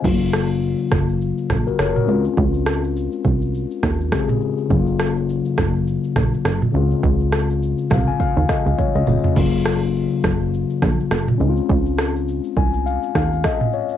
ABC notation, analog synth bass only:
X:1
M:4/4
L:1/16
Q:"Swing 16ths" 1/4=103
K:Gblyd
V:1 name="Analog synth bass" clef=bass
G,,,4- G,,, z G,,,4 B,,,2 G,,,2 D,,2 | D,,4- D,, z C,,4 E,,3 z3 | G,,,4- G,,, z G,,,4 B,,,2 G,,,2 D,,2 | D,,4- D,, z C,,2 z E,, z D,, z D,, F,,, z |
G,,,4- G,,, z G,,,4 B,,,2 G,,,2 D,,2 | D,,4- D,, z C,,4 E,,3 z3 |]